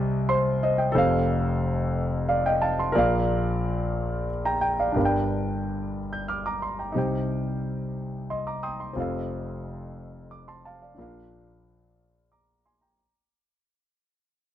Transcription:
Already playing: C2 C3 G4 C5 D#5
0.29 C5 C6
0.63 C5 D#5
0.78 D#5 G5
0.92 F1 F2 A4 C5
0.98 F5
2.29 D5 F5
2.46 D#5 G5
2.62 F5 A5
2.79 A5 C6
2.92 A#1 A#2 A#4 D5
2.98 F5
4.45 G5 A#5
4.61 G5
4.80 D5 F5
4.92 G1 G2 D4 G4
4.96 A#4 F5
5.05 G5
6.13 G6
6.28 D6 F6
6.46 A#5 D6
6.62 C6
6.79 G5 A#5
6.92 C2 C3 D#4 G4 C5
6.98 G5
8.30 D#5 C6
8.47 A#5 D6
8.63 G5 C6 D#6
8.80 C6
8.93 F1 F2 C4 F4 A4
9.00 F5
10.31 D6
10.48 A5 C6
10.65 F5 A5
10.82 D5 F5
10.95 A#1 A#2 C#4 F4
10.99 D4 A#4 F5
12.32 A#5 D6
12.66 G#5 C6
12.81 G5 A#5

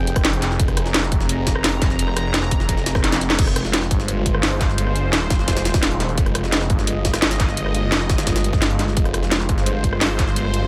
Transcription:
Already playing: F1 C4 G#4 G5
0.07 closed hi-hat
0.16 kick, cross-stick, closed hi-hat
0.25 snare, closed hi-hat
0.33 closed hi-hat
0.42 snare, closed hi-hat
0.51 snare
0.59 F1 A#5, kick, closed hi-hat
0.68 cross-stick, closed hi-hat
0.77 cross-stick, closed hi-hat
0.86 snare
0.94 snare, closed hi-hat
1.03 cross-stick, snare
1.12 kick, closed hi-hat
1.20 snare
1.29 closed hi-hat
1.47 kick, snare, closed hi-hat
1.55 cross-stick
1.64 snare, closed hi-hat, open hi-hat
1.82 kick, snare, closed hi-hat
1.90 snare
1.99 F1, closed hi-hat
2.08 cross-stick
2.17 cross-stick, closed hi-hat
2.34 snare, closed hi-hat
2.43 cross-stick, snare
2.51 kick, closed hi-hat
2.60 snare
2.69 kick, closed hi-hat
2.77 snare
2.86 F1, snare, closed hi-hat
2.95 kick, cross-stick, snare
3.04 snare, closed hi-hat
3.12 snare, closed hi-hat
3.21 snare, closed hi-hat
3.30 snare, closed hi-hat
3.39 F1 G#3 F4 C5, kick, closed hi-hat, crash
3.47 cross-stick, closed hi-hat
3.56 cross-stick, closed hi-hat
3.65 snare
3.73 snare, closed hi-hat
3.82 cross-stick, snare
3.91 G1, kick, closed hi-hat
4.00 snare
4.08 closed hi-hat
4.26 kick, closed hi-hat
4.35 cross-stick
4.43 G1, snare, closed hi-hat, open hi-hat
4.61 kick, snare, closed hi-hat
4.70 snare
4.78 closed hi-hat
4.87 cross-stick
4.96 closed hi-hat
5.13 snare, closed hi-hat
5.22 cross-stick, snare
5.30 F1, kick, snare, closed hi-hat
5.39 snare
5.48 kick, snare, closed hi-hat
5.57 snare, closed hi-hat
5.65 snare, closed hi-hat
5.74 kick, snare, closed hi-hat
5.83 D#1, snare, closed hi-hat
5.92 closed hi-hat
6.00 snare, closed hi-hat
6.09 snare
6.18 F1 D#5, kick, closed hi-hat
6.26 cross-stick, closed hi-hat
6.35 cross-stick, closed hi-hat
6.44 snare
6.52 snare, closed hi-hat
6.61 cross-stick, snare
6.70 G1, kick, closed hi-hat
6.79 snare
6.87 closed hi-hat
7.05 kick, snare, closed hi-hat
7.13 cross-stick, snare, closed hi-hat
7.22 G1, snare, closed hi-hat
7.31 snare, closed hi-hat
7.40 kick, snare, closed hi-hat
7.49 snare
7.57 closed hi-hat
7.66 cross-stick
7.75 closed hi-hat
7.83 F#1
7.92 snare, closed hi-hat
8.01 cross-stick, snare
8.09 G1, kick, snare, closed hi-hat
8.18 snare, closed hi-hat
8.27 kick, snare, closed hi-hat
8.36 snare, closed hi-hat
8.44 closed hi-hat
8.53 kick, snare
8.62 snare, closed hi-hat
8.71 closed hi-hat
8.79 snare, closed hi-hat
8.88 snare
8.97 F1 C5, kick, closed hi-hat
9.05 cross-stick, closed hi-hat
9.14 cross-stick, closed hi-hat
9.23 snare
9.31 snare, closed hi-hat
9.40 cross-stick, snare
9.49 G1, kick, closed hi-hat
9.58 snare
9.66 closed hi-hat
9.84 kick, closed hi-hat
9.93 cross-stick
10.01 G1, snare, closed hi-hat, open hi-hat
10.19 kick, snare, closed hi-hat
10.28 snare
10.36 closed hi-hat
10.45 cross-stick
10.54 closed hi-hat
10.62 F#1

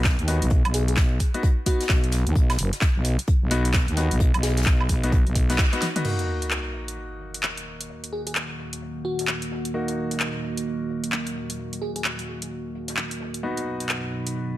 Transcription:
Already playing: B1
0.04 kick, snare, clap, closed hi-hat
0.19 D#2, closed hi-hat
0.27 B3 D#4 F#4, closed hi-hat, open hi-hat
0.42 B1, closed hi-hat
0.50 kick, closed hi-hat
0.65 B1, closed hi-hat, high woodblock
0.74 G#4, closed hi-hat, open hi-hat
0.88 G#4, closed hi-hat
0.97 B1, kick, snare, clap, closed hi-hat
1.20 kick, closed hi-hat, open hi-hat
1.34 B3 D#4 F#4, closed hi-hat
1.43 kick, closed hi-hat
1.66 B3 D#4 F#4, kick, closed hi-hat, open hi-hat
1.81 snare, closed hi-hat
1.89 B1, kick, snare, clap, closed hi-hat
2.04 closed hi-hat
2.12 snare, closed hi-hat, open hi-hat
2.27 D#2, closed hi-hat
2.35 B1, kick, closed hi-hat
2.50 snare, closed hi-hat, high woodblock
2.58 F#1, closed hi-hat, open hi-hat
2.72 snare, closed hi-hat
2.81 kick, snare, clap, closed hi-hat
2.96 B1
3.04 closed hi-hat, open hi-hat
3.19 closed hi-hat
3.27 kick, closed hi-hat
3.42 B1
3.51 B3 D#4 F#4, closed hi-hat, open hi-hat
3.65 closed hi-hat
3.73 kick, snare, clap, closed hi-hat
3.88 D#2, closed hi-hat
3.97 B3 D#4 F#4, closed hi-hat, open hi-hat
4.11 B1, closed hi-hat
4.20 kick, closed hi-hat
4.34 B1, closed hi-hat, high woodblock
4.43 G#4, snare, closed hi-hat, open hi-hat
4.57 G#4, snare, closed hi-hat
4.62 snare, closed hi-hat
4.66 B1, kick, snare, clap, closed hi-hat
4.80 high woodblock
4.89 B1, kick, closed hi-hat, open hi-hat
5.03 B3 D#4 F#4, closed hi-hat
5.12 kick, closed hi-hat
5.27 B1, closed hi-hat
5.35 kick, closed hi-hat, open hi-hat
5.50 B3 D#4 F#4, snare, closed hi-hat
5.58 kick, snare, clap, closed hi-hat
5.73 B3 D#4 F#4, closed hi-hat
5.81 snare, closed hi-hat, open hi-hat
5.96 B3 D#4 F#4, closed hi-hat, mid tom
6.04 D#3 A#3 D#4 F#4, closed hi-hat, crash, sub drop
6.19 snare, closed hi-hat
6.28 closed hi-hat
6.41 snare, closed hi-hat
6.51 clap, closed hi-hat
6.73 closed hi-hat
6.88 closed hi-hat
6.97 closed hi-hat
7.21 closed hi-hat
7.34 closed hi-hat
7.43 clap, closed hi-hat
7.58 closed hi-hat
7.66 closed hi-hat
7.80 closed hi-hat
7.89 closed hi-hat
8.04 closed hi-hat
8.12 G#4, closed hi-hat
8.27 G#4, closed hi-hat
8.35 clap, closed hi-hat
8.59 closed hi-hat
8.73 closed hi-hat
8.82 closed hi-hat
9.05 F#4, closed hi-hat
9.19 snare, closed hi-hat
9.27 clap
9.42 closed hi-hat
9.51 snare, closed hi-hat
9.65 closed hi-hat
9.74 A#3 D#4 F#4, closed hi-hat
9.88 snare, closed hi-hat
9.97 closed hi-hat
10.11 snare, closed hi-hat
10.20 clap, closed hi-hat
10.44 closed hi-hat
10.57 closed hi-hat
10.67 closed hi-hat
10.90 closed hi-hat
11.04 closed hi-hat
11.12 clap
11.27 closed hi-hat
11.35 closed hi-hat
11.49 closed hi-hat
11.59 closed hi-hat
11.73 closed hi-hat
11.82 G#4, closed hi-hat
11.96 G#4, closed hi-hat
12.04 clap
12.19 closed hi-hat
12.27 closed hi-hat
12.42 closed hi-hat
12.51 closed hi-hat
12.75 closed hi-hat
12.88 snare, closed hi-hat
12.97 clap, closed hi-hat
13.11 closed hi-hat
13.20 snare, closed hi-hat
13.34 closed hi-hat
13.43 B2 F#3 B3 D#4 F#4, closed hi-hat
13.57 snare, closed hi-hat
13.66 closed hi-hat
13.80 snare, closed hi-hat
13.89 clap, closed hi-hat
14.12 closed hi-hat
14.27 closed hi-hat
14.35 closed hi-hat

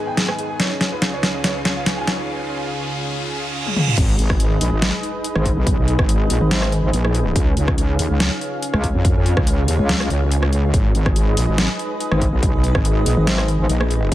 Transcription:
Already playing: G#2 D#3 B3 D#4 G#4 B4 G#5, riser
0.07 G5
0.17 G#4, snare, closed hi-hat
0.28 G#5, cross-stick
0.39 G#4, closed hi-hat
0.50 G#4
0.60 C#2 C#3 F4 C#5, snare, closed hi-hat
0.71 C#4 C#5
0.81 C#4, snare, closed hi-hat
0.92 B4
1.02 C#4, snare, closed hi-hat
1.13 C#5
1.23 C#4, snare, closed hi-hat
1.34 C#4
1.44 C#5, snare, closed hi-hat
1.55 C#4
1.65 C#4, snare, closed hi-hat
1.76 F5
1.86 C#4, snare, closed hi-hat
1.98 G#5
2.07 C#4, snare, closed hi-hat
2.19 C#4
3.13 reverse cymbal
3.66 high tom
3.76 mid tom
3.88 mid tom
3.98 G#1 G#3 D#4 G#4 B4 D#5, kick, closed hi-hat, crash, impact
4.19 G#1 B4, closed hi-hat
4.30 kick, cross-stick
4.40 closed hi-hat
4.61 A#1, open hi-hat
4.72 G#1
4.82 snare, closed hi-hat
5.03 closed hi-hat
5.24 closed hi-hat
5.36 G#1, cross-stick
5.46 kick, closed hi-hat
5.57 B1
5.67 kick, closed hi-hat
5.78 B1
5.88 closed hi-hat
5.99 G#1, kick, cross-stick
6.09 closed hi-hat
6.30 A#1, open hi-hat
6.41 G#1
6.51 snare, closed hi-hat
6.62 cross-stick
6.72 closed hi-hat
6.83 G#1
6.93 A#1, closed hi-hat
7.05 cross-stick
7.15 closed hi-hat
7.36 C#2 C#3 C#4 F4 F5, kick, closed hi-hat
7.57 C#2 C#5, closed hi-hat
7.68 kick, cross-stick
7.78 closed hi-hat
7.99 D#2, open hi-hat
8.10 C#2
8.20 snare, closed hi-hat
8.41 closed hi-hat
8.62 closed hi-hat
8.74 C#2, cross-stick
8.84 kick, closed hi-hat
8.95 F2
9.05 kick, closed hi-hat
9.16 F2
9.26 closed hi-hat
9.37 C#2, kick, cross-stick
9.47 closed hi-hat
9.68 D#2, open hi-hat
9.79 C#2
9.89 snare, closed hi-hat
10.00 cross-stick
10.10 C#2, closed hi-hat
10.31 closed hi-hat
10.43 cross-stick
10.53 closed hi-hat
10.74 G#1 G#3 D#4 G#4 B4 D#5, kick, closed hi-hat
10.95 G#1 B4, closed hi-hat
11.06 kick, cross-stick
11.16 closed hi-hat
11.37 A#1, open hi-hat
11.48 G#1
11.58 snare, closed hi-hat
11.79 closed hi-hat
12.00 closed hi-hat
12.12 G#1, cross-stick
12.22 kick, closed hi-hat
12.33 B1
12.43 kick, closed hi-hat
12.54 B1
12.64 closed hi-hat
12.75 G#1, kick, cross-stick
12.85 closed hi-hat
13.06 A#1, open hi-hat
13.17 G#1
13.27 snare, closed hi-hat
13.38 cross-stick
13.48 closed hi-hat
13.59 G#1
13.69 A#1, closed hi-hat
13.81 cross-stick
13.91 closed hi-hat

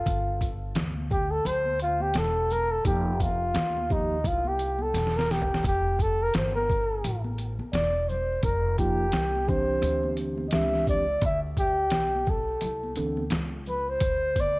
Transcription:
Already playing: F4
0.05 G1, kick, closed hi-hat, shaker
0.27 shaker
0.40 kick, closed hi-hat, shaker
0.63 shaker
0.75 D2, snare, closed hi-hat, shaker
0.97 high conga, shaker
1.10 G4, kick, low conga, shaker
1.31 A4, shaker
1.45 D2 C5, closed hi-hat, low conga, shaker
1.65 high conga, shaker
1.80 F4, closed hi-hat, high conga, shaker
2.00 G4, high conga, shaker
2.14 E1, snare, closed hi-hat, shaker
2.18 A4
2.35 shaker
2.50 A#4, low conga, shaker
2.71 A4, shaker
2.84 F1 F3 A#3 D#4 G4, kick, closed hi-hat, shaker
3.07 shaker
3.20 F4, kick, closed hi-hat, high conga, shaker
3.43 shaker
3.54 D#2, snare, closed hi-hat, shaker
3.77 high conga, shaker
3.89 F3 A#3 D#4 G4, kick, low conga, shaker
4.11 shaker
4.24 C2 F4, kick, closed hi-hat, low conga, shaker
4.44 G4, high conga, shaker
4.59 closed hi-hat, high conga, shaker
4.79 A4, high conga, shaker
4.94 E1, snare, closed hi-hat, shaker
5.07 snare
5.14 A#4, shaker
5.19 snare
5.31 G4, snare, low conga, shaker
5.42 floor tom
5.50 snare, shaker
5.64 F1 G4, kick, closed hi-hat, shaker
5.86 shaker
5.99 A4, kick, closed hi-hat, shaker
6.22 A#4, shaker
6.34 G1 C5, snare, closed hi-hat, shaker
6.55 A#4, high conga, shaker
6.68 kick, low conga, shaker
6.70 shaker
6.90 shaker
7.04 A1, closed hi-hat, low conga, shaker
7.24 high conga, shaker
7.38 closed hi-hat, high conga, shaker
7.59 muted upright bass stroke, high conga, shaker
7.73 E1 D5, snare, closed hi-hat, shaker
7.94 shaker
8.09 C5, low conga, shaker
8.30 shaker
8.43 F1 A#4, kick, closed hi-hat, shaker
8.66 shaker
8.78 F3 A#3 D#4 F4 G4, kick, closed hi-hat, shaker
9.01 shaker
9.12 C2, snare, closed hi-hat, shaker
9.35 high conga, shaker
9.47 E3 C4 D4 G4 C5, kick, low conga, shaker
9.69 shaker
9.82 D2, closed hi-hat, low conga, shaker
10.03 high conga, shaker
10.17 closed hi-hat, high conga, shaker
10.19 shaker
10.38 high conga, shaker
10.48 D#5, closed hi-hat
10.52 C#2 E3 C4 D4 G4 E5, snare, shaker
10.72 snare, shaker
10.87 D5, kick, low conga, shaker
11.09 shaker
11.22 D2 E5, kick, closed hi-hat, shaker
11.44 shaker
11.57 G4, kick, closed hi-hat, shaker
11.80 shaker
11.90 B1, snare, closed hi-hat, shaker
12.15 high conga, shaker
12.26 A4, kick, low conga, shaker
12.49 shaker
12.61 C2, closed hi-hat, low conga, shaker
12.83 high conga, shaker
12.96 D2 E3 C4 D4 A4, closed hi-hat, high conga, shaker
12.99 shaker
13.17 high conga, shaker
13.30 C#2, snare, closed hi-hat, shaker
13.52 shaker
13.66 B4, low conga, shaker
13.87 C5, shaker
14.00 D2, kick, closed hi-hat, shaker
14.23 shaker
14.36 kick, closed hi-hat, high conga, shaker
14.40 D5

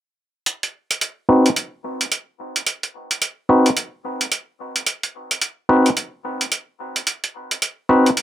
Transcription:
0.46 closed hi-hat
0.63 closed hi-hat
0.91 closed hi-hat
1.01 closed hi-hat
1.29 C4 D#4 F#4 B4
1.46 closed hi-hat
1.56 closed hi-hat
2.01 closed hi-hat
2.12 closed hi-hat
2.56 closed hi-hat
2.67 closed hi-hat
2.83 closed hi-hat
3.11 closed hi-hat
3.22 closed hi-hat
3.49 C4 D#4 F#4 B4
3.66 closed hi-hat
3.77 closed hi-hat
4.21 closed hi-hat
4.32 closed hi-hat
4.76 closed hi-hat
4.86 closed hi-hat
5.03 closed hi-hat
5.31 closed hi-hat
5.41 closed hi-hat
5.69 C4 D#4 F#4 B4
5.86 closed hi-hat
5.97 closed hi-hat
6.41 closed hi-hat
6.52 closed hi-hat
6.96 closed hi-hat
7.07 closed hi-hat
7.24 closed hi-hat
7.51 closed hi-hat
7.62 closed hi-hat
7.89 C4 D#4 F#4 B4
8.06 closed hi-hat
8.17 closed hi-hat

